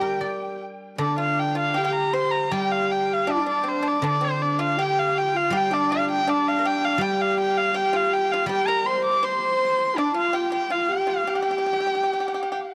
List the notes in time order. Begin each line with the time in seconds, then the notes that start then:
Already playing: D3 G3 D4 G4 G5
0.01 A#4
0.21 D5
0.98 D3 D4 D5
1.18 F4 F5
1.39 G5
1.55 F4
1.59 F5
1.74 G4 G5
1.79 F5
1.84 G4 G5
1.95 A#5
2.13 C5 C6
2.31 A#5
2.51 G3 G4 G5
2.72 F5
2.92 G5
3.13 F5
3.27 D4
3.31 D5
3.46 D4 D5
3.64 C4
3.68 C5
3.83 D4
3.88 D5
4.02 D3 D4
4.07 D5
4.21 C4 C5
4.41 D4 D5
4.59 F4 F5
4.77 G4
4.82 G5
4.99 F5
5.18 G5
5.24 F4
5.34 F4 F5
5.50 G3 G4
5.57 G5
5.71 D4 D5
5.91 F4 F5
6.11 G5
6.25 D4
6.30 D5
6.48 F5
6.59 A#4
6.65 G4 G5
6.85 F5
6.98 G3 G4
7.02 G5
7.21 F5
7.41 G5
7.57 F5
7.74 G4 G5
7.93 F4 F5
8.13 G5
8.32 F4 F5
8.46 G3 G4 G5
8.67 A#4 A#5
8.86 C5 C6
9.05 D6
9.23 C5 C6
9.95 D4 D5
10.14 F4 F5
10.33 G4 G5
10.52 G4 G5
10.70 F4 F5
10.88 G4
10.92 G5
11.07 F4 F5
11.27 G4 G5
11.35 G4
11.42 G4
11.51 G4
11.58 G4
11.66 G4
11.73 G4
11.80 G4
11.87 G4
11.95 G4
12.03 G4
12.13 G4
12.20 G4
12.28 G4
12.34 G4
12.43 G4
12.52 G4